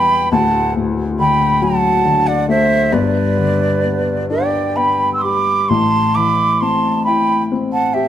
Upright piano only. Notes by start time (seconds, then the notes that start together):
Already playing: E1 E2 B2 E3 G3 B3
0.32 D1 D2
0.76 A2
1.19 D3
1.62 F#3
2.05 D3
2.49 A3
2.93 G1 G2
3.37 D3
3.84 B3
4.30 D4
4.76 B3
5.23 G4
5.70 A1 A2
6.16 E3
6.62 C4
7.07 E4
7.52 C4
7.95 G4